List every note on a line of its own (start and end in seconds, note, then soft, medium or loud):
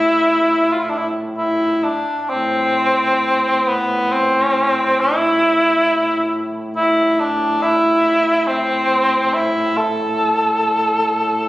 0.00 2.09 A2 soft
0.00 0.74 E4 medium
0.72 0.81 F4 medium
0.80 0.91 E4 medium
0.90 0.99 D4 medium
0.98 1.07 E4 medium
1.37 1.85 E4 medium
1.83 2.20 D4 medium
2.20 2.31 D4 soft
2.26 11.49 A2 soft
2.26 3.69 C4 medium
3.67 4.13 B3 medium
4.12 5.02 C4 medium
5.01 6.49 E4 medium
6.76 7.21 E4 medium
7.20 7.63 D4 medium
7.62 8.49 E4 medium
8.47 9.35 C4 medium
9.33 9.78 E4 medium
9.77 11.49 A4 medium